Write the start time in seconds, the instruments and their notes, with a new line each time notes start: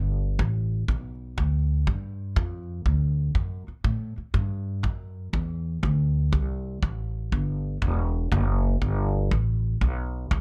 Already playing: upright bass G1
0.39 upright bass A1, kick
0.88 upright bass B1, kick
1.38 upright bass D2, kick
1.87 upright bass G2, kick
2.36 upright bass F2, kick
2.86 upright bass D2, kick
3.35 upright bass F#2, kick
3.68 muted upright bass stroke
3.84 upright bass A2, kick
4.18 muted upright bass stroke
4.34 upright bass G2, kick
4.83 upright bass F#2, kick
5.33 upright bass E2, kick
5.83 upright bass D2, kick
6.32 upright bass C2, kick
6.83 upright bass A1, kick
7.32 upright bass G1, kick
7.82 upright bass E1, kick
8.32 upright bass F#1, kick
8.81 upright bass G1, kick
9.31 upright bass A1, kick
9.81 upright bass B1, kick
10.31 upright bass C2, kick